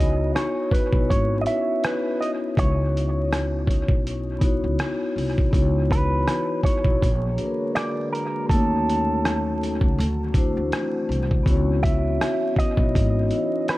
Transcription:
Already playing: C#2 B3 D#4 E4 F#4 C#5
0.00 D#5, closed hi-hat
0.35 C#5, cross-stick, closed hi-hat
0.71 B4, kick, closed hi-hat
0.92 B1 B3 D#4 E4, kick
0.96 F#4 C#5
1.10 G#1 C#5, kick, closed hi-hat
1.41 B3 D#5
1.46 C#4 E4 F#4 E5, closed hi-hat
1.50 C#5
1.84 B4, cross-stick, closed hi-hat
2.21 D#5, closed hi-hat
2.57 C#2 C#5, kick, closed hi-hat
2.97 closed hi-hat
3.33 cross-stick, closed hi-hat
3.67 kick, closed hi-hat
3.89 B1, kick
4.07 closed hi-hat
4.38 B3 D#4 E4, kick, closed hi-hat
4.44 F#4 C#5
4.64 C#2
4.79 cross-stick, closed hi-hat
5.16 C2, open hi-hat
5.38 kick
5.51 C#2 E3 B3 D#4 E4 F#4, kick, closed hi-hat
5.55 F#4 C#5
5.91 B4, kick, closed hi-hat
6.28 cross-stick, closed hi-hat
6.63 C#5, kick, closed hi-hat
6.84 B1 B3 D#4 E4, kick
6.88 F#4 C#5
7.01 A#1 D3 G#3 A#3, kick, closed hi-hat
7.33 A#3 D4 F#4
7.38 G#4 B4, closed hi-hat
7.46 A#4
7.75 D5, cross-stick, closed hi-hat
8.12 A#4, closed hi-hat
8.47 D#2 D#3 A3 C#4 D#4 A4, kick
8.51 F#4 C#5, closed hi-hat
8.90 closed hi-hat
9.25 cross-stick, closed hi-hat
9.63 closed hi-hat
9.81 C#2, kick
9.97 D2 E3 C4 D4, closed hi-hat
10.31 A3 D4 E4, kick, closed hi-hat
10.36 F#4 C5
10.57 D2
10.72 cross-stick, closed hi-hat
11.09 C2, closed hi-hat
11.31 kick
11.43 C#2 E3 B3 C#4 E4, kick
11.47 F#4 C#5, closed hi-hat
11.83 E5, kick, closed hi-hat
12.21 cross-stick, closed hi-hat
12.56 D#5, kick, closed hi-hat
12.76 B1 B3 D#4 E4, kick
12.81 F#4 C#5
12.95 G#1, kick, closed hi-hat
13.29 B3 D#4 E4, closed hi-hat
13.34 F#4 C#5
13.68 B4, cross-stick, closed hi-hat

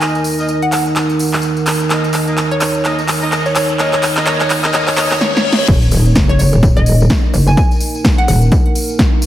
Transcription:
Already playing: D#3 D#4 A#4, riser
0.01 A#3 D#4 A#4 D#5 G#5, clap, closed hi-hat, tambourine
0.15 closed hi-hat, tambourine
0.24 open hi-hat, tambourine
0.39 A#3 D#4 A#4 D#5, closed hi-hat, tambourine
0.49 closed hi-hat, tambourine
0.62 F#5, closed hi-hat
0.72 F#5, clap, open hi-hat, tambourine
0.86 closed hi-hat, tambourine
0.96 clap, closed hi-hat, tambourine
1.09 closed hi-hat, tambourine
1.19 open hi-hat, tambourine
1.33 clap, tambourine
1.42 closed hi-hat, tambourine
1.57 closed hi-hat, tambourine
1.66 clap, open hi-hat, tambourine
1.80 closed hi-hat, tambourine
1.90 A#3 D#4 A#4 D#5, clap, closed hi-hat, tambourine
2.04 closed hi-hat, tambourine
2.13 clap, open hi-hat, tambourine
2.27 A#3 D#4 A#4 D#5, tambourine
2.38 clap, closed hi-hat, tambourine
2.51 C#5, closed hi-hat
2.60 C#5, clap, open hi-hat, tambourine
2.75 closed hi-hat, tambourine
2.85 A#3 D#4 A#4 D#5, clap, closed hi-hat, tambourine
2.99 closed hi-hat, tambourine
3.08 clap, open hi-hat, tambourine
3.22 A#3 D#4 A#4 D#5, tambourine
3.32 clap, closed hi-hat, tambourine
3.46 C#5, closed hi-hat, tambourine
3.55 C#5, clap, open hi-hat, tambourine
3.69 tambourine
3.79 A#3 D#4 A#4 C#5 D#5, clap, closed hi-hat, tambourine
3.93 C#5, clap, closed hi-hat, tambourine
4.03 clap, open hi-hat, tambourine
4.17 A#3 D#4 A#4 D#5, clap, tambourine
4.26 A#3 D#4 A#4 C#5 D#5, clap, closed hi-hat, tambourine
4.40 C#5, clap, closed hi-hat, tambourine
4.50 clap, open hi-hat, tambourine
4.64 A#3 D#4 A#4 D#5, clap, tambourine
4.73 A#3 D#4 A#4 C#5 D#5, clap, closed hi-hat, tambourine, reverse cymbal
4.87 C#5, clap, open hi-hat, tambourine
4.97 A#3 D#4 A#4 C#5 D#5, clap, open hi-hat, tambourine
5.11 C#5, clap, tambourine
5.21 C#5, snare
5.35 C#5, snare
5.45 C#5
5.53 snare
5.58 C#5
5.68 D#1 A#3 D#4 A#4, kick, closed hi-hat, crash, tambourine, impact
5.82 closed hi-hat, tambourine
5.91 D#1, open hi-hat, tambourine
6.06 closed hi-hat, tambourine
6.15 kick, snare, closed hi-hat, tambourine
6.29 C#5, closed hi-hat
6.39 C#5, open hi-hat, tambourine
6.53 D#1, closed hi-hat, tambourine
6.63 kick, closed hi-hat, tambourine
6.77 D#1 D#5, closed hi-hat
6.86 open hi-hat, tambourine
7.00 closed hi-hat, tambourine
7.10 kick, snare, closed hi-hat, tambourine
7.34 F#1, open hi-hat, tambourine
7.47 G#5, closed hi-hat, tambourine
7.57 G#5, kick, closed hi-hat, tambourine
7.71 closed hi-hat, tambourine
7.80 open hi-hat, tambourine
7.95 closed hi-hat, tambourine
8.05 kick, snare, closed hi-hat, tambourine
8.18 F#5, closed hi-hat
8.28 D#1 F#5, open hi-hat, tambourine
8.42 closed hi-hat, tambourine
8.51 kick, closed hi-hat, tambourine
8.66 closed hi-hat
8.75 open hi-hat, tambourine
8.89 closed hi-hat, tambourine
8.99 kick, snare, closed hi-hat, tambourine
9.22 open hi-hat, tambourine

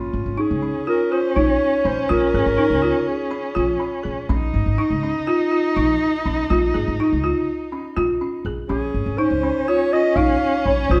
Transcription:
Already playing: C#4 F4
0.13 G#1
0.26 G#1
0.38 D#4 G#4
0.51 C#2
0.62 C#4
0.87 F4 A#4
1.12 F4 C5
1.36 A#1 D#4 C#5
1.85 A#1 C#4 C5
2.02 C5
2.09 A#1 F4 A#4
2.34 G#1 G#4
2.46 G#1
2.58 D#4
2.70 C#2
2.82 F4
3.09 G#4
3.31 C#4
3.55 A#1 F4
3.79 C#4
4.03 A#1 G#4
4.28 A#1 C#4 D#4
4.54 G#1
4.66 G#1
4.78 D#4
4.90 C#2
5.03 C#4
5.27 F4
5.52 F4
5.76 A#1 D#4
6.25 A#1 C#4
6.50 A#1 F4
6.74 G#1 G#4
6.88 G#1
7.00 D#4
7.12 C#2
7.24 F4
7.72 C#4
7.97 A#1 F4
8.21 C#4
8.45 A#1 G#4
8.69 A#1 C#4 G#4
8.94 G#1
9.06 G#1
9.18 D#4 C5
9.31 C#2
9.43 C#4
9.68 F4 C#5
9.93 F4 D#5
10.16 A#1 D#4 F5
10.66 A#1 C#4 C#5
10.90 A#1 F4 C5

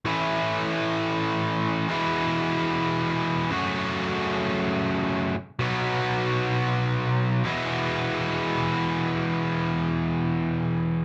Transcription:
0.05 A2 E3 A3 C#4 E4
1.89 E2 B2 E3 G#3 B3 E4
3.51 F#2 C#3 F#3 A3 C#4 F#4
5.59 B2 F#3 B3 D#4 F#4
7.44 E2 B2 E3 G#3 B3 E4

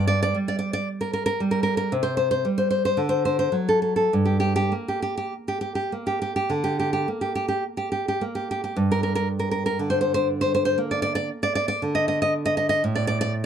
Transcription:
Already playing: G2
0.07 D5
0.23 D5
0.34 G3
0.48 D5
0.59 D5
0.73 D5
1.01 A#4
1.13 A#4
1.26 A#4
1.40 G3
1.51 A#4
1.63 A#4
1.77 A#4
1.92 C3
2.03 C5
2.17 C5
2.31 C5
2.45 G3
2.58 C5
2.70 C5
2.85 C5
2.97 D3
3.09 C5
3.25 C5
3.39 C5
3.52 F#3
3.69 A4
3.82 A4
3.96 A4
4.13 G2
4.25 G4
4.40 G4
4.56 G4
4.72 A#3
4.88 G4
5.02 G4
5.17 G4
5.48 G4
5.61 G4
5.75 G4
5.92 A#3
6.07 G4
6.22 G4
6.36 G4
6.50 D3
6.64 G4
6.80 G4
6.93 G4
7.08 A#3
7.21 G4
7.35 G4
7.48 G4
7.77 G4
7.92 G4
8.08 G4
8.21 A#3
8.35 G4
8.51 G4
8.64 G4
8.76 G2
8.91 A#4
9.03 A#4
9.15 A#4
9.39 A#4
9.51 A#4
9.66 A#4
9.79 D3
9.90 C5
10.01 C5
10.14 C5
10.41 C5
10.55 C5
10.65 C5
10.78 A#3
10.91 D5
11.02 D5
11.15 D5
11.43 D5
11.55 D5
11.68 D5
11.82 D3
11.95 D#5
12.08 D#5
12.22 D#5
12.46 D#5
12.57 D#5
12.69 D#5
12.84 A2
12.95 D5
13.07 D5
13.21 D5

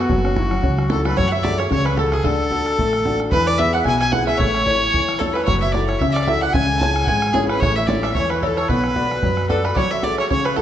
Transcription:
Already playing: F#4
0.00 F#4
0.09 F#1 F#3, bodhran
0.24 C#4, bodhran
0.35 E4, bodhran
0.51 F#3, bodhran
0.63 C#2 C#4, bodhran
0.78 F#3, bodhran
0.90 E4 A4, bodhran
1.05 F#3 B4, bodhran
1.17 F#2 F#3 C#5, bodhran
1.27 E5 F#5
1.31 E5
1.43 F#4 G#4 A4 D5, bodhran
1.52 bodhran
1.58 C#5, bodhran
1.70 C#2 C#3 C#5, bodhran
1.85 B4, bodhran
1.97 F#4 G#4 A4, bodhran
2.05 bodhran
2.12 G#4, bodhran
2.24 D2 D3 A4, bodhran
2.51 D4 F#4 A4, bodhran
2.59 bodhran
2.66 bodhran
2.78 A1 A3, bodhran
2.93 bodhran
3.05 D4 F#4 A4, bodhran
3.13 bodhran
3.20 bodhran
3.31 E2 E3 B4, bodhran
3.46 D5
3.58 B3 E4 G#4 E5, bodhran
3.66 bodhran
3.73 F#5, bodhran
3.85 B1 B2 G#5, bodhran
3.99 G#5, bodhran
4.12 B3 E4 G#4 F#5, bodhran
4.20 bodhran
4.27 E5, bodhran
4.38 A1 A3 C#5, bodhran
4.54 bodhran
4.66 E4 A4 C#5, bodhran
4.94 E2 E3, bodhran
5.08 bodhran
5.18 E4 A4 C#5, bodhran
5.29 bodhran
5.33 B4, bodhran
5.45 F#1 F#3 C#5, bodhran
5.60 E5
5.72 E4 F#4 A4 D5, bodhran
5.86 C#5, bodhran
5.99 C#2 C#3 E5, bodhran
6.11 D5 E5
6.16 D5, bodhran
6.24 E4 F#4 A4 E5, bodhran
6.28 E5
6.35 bodhran
6.41 F#5, bodhran
6.53 C#2 C#3 G#5, bodhran
6.77 C#4 E4 G#4 G#5 A5, bodhran
6.83 G#5
6.96 bodhran
7.04 G#1 F#5 G#5, bodhran
7.08 G#3 G#5
7.22 bodhran
7.33 C#4 E4 G#4, bodhran
7.42 bodhran
7.48 B4, bodhran
7.60 A1 A3 C#5, bodhran
7.75 E5
7.86 E4 A4 C#5 D5 E5, bodhran
7.96 bodhran
8.03 E5, bodhran
8.14 E2 E3 C#5, bodhran
8.30 B4, bodhran
8.42 E4 A4 C#5, bodhran
8.50 bodhran
8.57 C#5, bodhran
8.68 B1 B3 B4, bodhran
8.84 bodhran
8.96 F#4 B4 D5, bodhran
9.04 bodhran
9.11 bodhran
9.23 F#2 F#3, bodhran
9.37 bodhran
9.48 F#4 A4 B4 D5, bodhran
9.57 bodhran
9.64 B4, bodhran
9.74 F#3 C#5 D5, bodhran
9.91 E5
10.03 F#4 G#4 A4 D5, bodhran
10.11 bodhran
10.18 C#5, bodhran
10.30 C#3 C#5, bodhran
10.45 B4, bodhran
10.56 F#4 G#4 A4, bodhran

